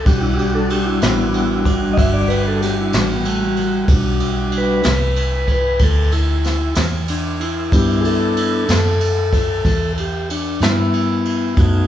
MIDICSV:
0, 0, Header, 1, 4, 480
1, 0, Start_track
1, 0, Key_signature, 1, "minor"
1, 0, Tempo, 638978
1, 44, Time_signature, 12, 3, 24, 8
1, 8917, End_track
2, 0, Start_track
2, 0, Title_t, "Tonewheel organ"
2, 0, Program_c, 0, 16
2, 40, Note_on_c, 0, 62, 47
2, 45, Note_on_c, 0, 55, 48
2, 52, Note_on_c, 0, 66, 55
2, 59, Note_on_c, 0, 67, 68
2, 157, Note_on_c, 0, 64, 70
2, 163, Note_off_c, 0, 67, 0
2, 271, Note_off_c, 0, 64, 0
2, 282, Note_on_c, 0, 67, 75
2, 394, Note_off_c, 0, 67, 0
2, 413, Note_on_c, 0, 69, 93
2, 520, Note_off_c, 0, 69, 0
2, 541, Note_on_c, 0, 67, 71
2, 641, Note_on_c, 0, 64, 80
2, 644, Note_off_c, 0, 67, 0
2, 753, Note_off_c, 0, 64, 0
2, 766, Note_on_c, 0, 59, 75
2, 775, Note_on_c, 0, 64, 77
2, 1213, Note_off_c, 0, 59, 0
2, 1234, Note_off_c, 0, 64, 0
2, 1452, Note_on_c, 0, 75, 71
2, 1481, Note_off_c, 0, 75, 0
2, 1491, Note_on_c, 0, 76, 107
2, 1598, Note_off_c, 0, 76, 0
2, 1602, Note_on_c, 0, 74, 71
2, 1713, Note_off_c, 0, 74, 0
2, 1715, Note_on_c, 0, 71, 72
2, 1829, Note_off_c, 0, 71, 0
2, 1861, Note_on_c, 0, 69, 65
2, 1963, Note_off_c, 0, 69, 0
2, 1978, Note_on_c, 0, 67, 67
2, 2081, Note_off_c, 0, 67, 0
2, 2110, Note_on_c, 0, 64, 81
2, 2207, Note_off_c, 0, 64, 0
2, 2213, Note_off_c, 0, 62, 0
2, 2222, Note_on_c, 0, 62, 85
2, 2323, Note_off_c, 0, 62, 0
2, 2346, Note_on_c, 0, 59, 64
2, 2445, Note_off_c, 0, 59, 0
2, 2468, Note_on_c, 0, 57, 79
2, 2566, Note_off_c, 0, 57, 0
2, 2600, Note_off_c, 0, 55, 0
2, 2609, Note_on_c, 0, 55, 86
2, 2696, Note_off_c, 0, 55, 0
2, 2705, Note_on_c, 0, 55, 108
2, 2894, Note_off_c, 0, 66, 0
2, 2928, Note_off_c, 0, 55, 0
2, 2937, Note_on_c, 0, 55, 50
2, 2945, Note_on_c, 0, 66, 61
2, 2946, Note_on_c, 0, 62, 47
2, 3438, Note_on_c, 0, 71, 87
2, 3618, Note_off_c, 0, 55, 0
2, 3622, Note_off_c, 0, 66, 0
2, 3623, Note_off_c, 0, 62, 0
2, 3652, Note_off_c, 0, 71, 0
2, 3664, Note_on_c, 0, 71, 66
2, 4118, Note_off_c, 0, 71, 0
2, 4144, Note_on_c, 0, 71, 77
2, 4365, Note_off_c, 0, 71, 0
2, 4387, Note_on_c, 0, 69, 75
2, 4602, Note_on_c, 0, 64, 84
2, 4607, Note_off_c, 0, 69, 0
2, 5067, Note_off_c, 0, 64, 0
2, 5333, Note_on_c, 0, 62, 96
2, 5560, Note_off_c, 0, 62, 0
2, 5573, Note_on_c, 0, 64, 78
2, 5800, Note_off_c, 0, 64, 0
2, 5805, Note_on_c, 0, 59, 48
2, 5811, Note_on_c, 0, 62, 48
2, 5822, Note_on_c, 0, 64, 56
2, 5826, Note_on_c, 0, 67, 83
2, 6010, Note_on_c, 0, 68, 62
2, 6040, Note_off_c, 0, 68, 0
2, 6047, Note_off_c, 0, 67, 0
2, 6047, Note_on_c, 0, 69, 90
2, 6494, Note_off_c, 0, 59, 0
2, 6497, Note_off_c, 0, 62, 0
2, 6503, Note_off_c, 0, 64, 0
2, 7457, Note_off_c, 0, 69, 0
2, 7513, Note_on_c, 0, 67, 73
2, 7733, Note_off_c, 0, 67, 0
2, 7745, Note_on_c, 0, 62, 85
2, 7969, Note_off_c, 0, 62, 0
2, 7980, Note_on_c, 0, 59, 87
2, 7982, Note_on_c, 0, 64, 98
2, 8674, Note_off_c, 0, 64, 0
2, 8697, Note_on_c, 0, 63, 49
2, 8703, Note_on_c, 0, 57, 50
2, 8709, Note_on_c, 0, 66, 59
2, 8905, Note_off_c, 0, 59, 0
2, 8917, Note_off_c, 0, 57, 0
2, 8917, Note_off_c, 0, 63, 0
2, 8917, Note_off_c, 0, 66, 0
2, 8917, End_track
3, 0, Start_track
3, 0, Title_t, "Fingered electric bass"
3, 0, Program_c, 1, 33
3, 47, Note_on_c, 1, 35, 77
3, 742, Note_off_c, 1, 35, 0
3, 767, Note_on_c, 1, 33, 93
3, 1462, Note_off_c, 1, 33, 0
3, 1483, Note_on_c, 1, 31, 82
3, 2180, Note_off_c, 1, 31, 0
3, 2204, Note_on_c, 1, 33, 75
3, 2900, Note_off_c, 1, 33, 0
3, 2915, Note_on_c, 1, 35, 81
3, 3615, Note_off_c, 1, 35, 0
3, 3645, Note_on_c, 1, 36, 85
3, 4341, Note_off_c, 1, 36, 0
3, 4357, Note_on_c, 1, 38, 78
3, 5057, Note_off_c, 1, 38, 0
3, 5079, Note_on_c, 1, 40, 76
3, 5779, Note_off_c, 1, 40, 0
3, 5803, Note_on_c, 1, 43, 74
3, 6501, Note_off_c, 1, 43, 0
3, 6526, Note_on_c, 1, 42, 87
3, 7224, Note_off_c, 1, 42, 0
3, 7248, Note_on_c, 1, 40, 72
3, 7946, Note_off_c, 1, 40, 0
3, 7965, Note_on_c, 1, 43, 76
3, 8666, Note_off_c, 1, 43, 0
3, 8695, Note_on_c, 1, 42, 76
3, 8917, Note_off_c, 1, 42, 0
3, 8917, End_track
4, 0, Start_track
4, 0, Title_t, "Drums"
4, 46, Note_on_c, 9, 36, 95
4, 48, Note_on_c, 9, 51, 70
4, 121, Note_off_c, 9, 36, 0
4, 123, Note_off_c, 9, 51, 0
4, 290, Note_on_c, 9, 51, 50
4, 365, Note_off_c, 9, 51, 0
4, 525, Note_on_c, 9, 51, 60
4, 600, Note_off_c, 9, 51, 0
4, 763, Note_on_c, 9, 51, 73
4, 774, Note_on_c, 9, 38, 98
4, 838, Note_off_c, 9, 51, 0
4, 849, Note_off_c, 9, 38, 0
4, 1004, Note_on_c, 9, 51, 56
4, 1079, Note_off_c, 9, 51, 0
4, 1243, Note_on_c, 9, 36, 75
4, 1245, Note_on_c, 9, 51, 62
4, 1318, Note_off_c, 9, 36, 0
4, 1320, Note_off_c, 9, 51, 0
4, 1483, Note_on_c, 9, 36, 86
4, 1488, Note_on_c, 9, 51, 83
4, 1558, Note_off_c, 9, 36, 0
4, 1563, Note_off_c, 9, 51, 0
4, 1725, Note_on_c, 9, 51, 66
4, 1800, Note_off_c, 9, 51, 0
4, 1969, Note_on_c, 9, 51, 65
4, 1980, Note_on_c, 9, 38, 31
4, 2044, Note_off_c, 9, 51, 0
4, 2055, Note_off_c, 9, 38, 0
4, 2199, Note_on_c, 9, 51, 69
4, 2211, Note_on_c, 9, 38, 97
4, 2275, Note_off_c, 9, 51, 0
4, 2286, Note_off_c, 9, 38, 0
4, 2440, Note_on_c, 9, 51, 67
4, 2515, Note_off_c, 9, 51, 0
4, 2678, Note_on_c, 9, 51, 50
4, 2753, Note_off_c, 9, 51, 0
4, 2916, Note_on_c, 9, 36, 102
4, 2916, Note_on_c, 9, 51, 77
4, 2991, Note_off_c, 9, 36, 0
4, 2991, Note_off_c, 9, 51, 0
4, 3155, Note_on_c, 9, 51, 54
4, 3230, Note_off_c, 9, 51, 0
4, 3393, Note_on_c, 9, 51, 55
4, 3468, Note_off_c, 9, 51, 0
4, 3630, Note_on_c, 9, 51, 70
4, 3642, Note_on_c, 9, 38, 99
4, 3705, Note_off_c, 9, 51, 0
4, 3717, Note_off_c, 9, 38, 0
4, 3877, Note_on_c, 9, 51, 60
4, 3952, Note_off_c, 9, 51, 0
4, 4113, Note_on_c, 9, 51, 55
4, 4114, Note_on_c, 9, 36, 65
4, 4188, Note_off_c, 9, 51, 0
4, 4190, Note_off_c, 9, 36, 0
4, 4351, Note_on_c, 9, 51, 70
4, 4355, Note_on_c, 9, 36, 78
4, 4426, Note_off_c, 9, 51, 0
4, 4430, Note_off_c, 9, 36, 0
4, 4596, Note_on_c, 9, 51, 56
4, 4671, Note_off_c, 9, 51, 0
4, 4838, Note_on_c, 9, 51, 60
4, 4849, Note_on_c, 9, 38, 31
4, 4913, Note_off_c, 9, 51, 0
4, 4924, Note_off_c, 9, 38, 0
4, 5071, Note_on_c, 9, 51, 70
4, 5082, Note_on_c, 9, 38, 89
4, 5146, Note_off_c, 9, 51, 0
4, 5157, Note_off_c, 9, 38, 0
4, 5316, Note_on_c, 9, 51, 61
4, 5391, Note_off_c, 9, 51, 0
4, 5563, Note_on_c, 9, 51, 63
4, 5638, Note_off_c, 9, 51, 0
4, 5801, Note_on_c, 9, 36, 94
4, 5804, Note_on_c, 9, 51, 75
4, 5876, Note_off_c, 9, 36, 0
4, 5879, Note_off_c, 9, 51, 0
4, 6043, Note_on_c, 9, 51, 55
4, 6118, Note_off_c, 9, 51, 0
4, 6285, Note_on_c, 9, 51, 64
4, 6360, Note_off_c, 9, 51, 0
4, 6524, Note_on_c, 9, 51, 76
4, 6535, Note_on_c, 9, 38, 87
4, 6599, Note_off_c, 9, 51, 0
4, 6611, Note_off_c, 9, 38, 0
4, 6765, Note_on_c, 9, 51, 63
4, 6840, Note_off_c, 9, 51, 0
4, 7006, Note_on_c, 9, 36, 78
4, 7007, Note_on_c, 9, 51, 65
4, 7081, Note_off_c, 9, 36, 0
4, 7082, Note_off_c, 9, 51, 0
4, 7248, Note_on_c, 9, 36, 83
4, 7249, Note_on_c, 9, 51, 69
4, 7323, Note_off_c, 9, 36, 0
4, 7324, Note_off_c, 9, 51, 0
4, 7491, Note_on_c, 9, 51, 54
4, 7566, Note_off_c, 9, 51, 0
4, 7736, Note_on_c, 9, 51, 62
4, 7811, Note_off_c, 9, 51, 0
4, 7973, Note_on_c, 9, 51, 70
4, 7984, Note_on_c, 9, 38, 93
4, 8048, Note_off_c, 9, 51, 0
4, 8059, Note_off_c, 9, 38, 0
4, 8213, Note_on_c, 9, 51, 58
4, 8288, Note_off_c, 9, 51, 0
4, 8453, Note_on_c, 9, 51, 50
4, 8528, Note_off_c, 9, 51, 0
4, 8690, Note_on_c, 9, 51, 62
4, 8692, Note_on_c, 9, 36, 96
4, 8765, Note_off_c, 9, 51, 0
4, 8768, Note_off_c, 9, 36, 0
4, 8917, End_track
0, 0, End_of_file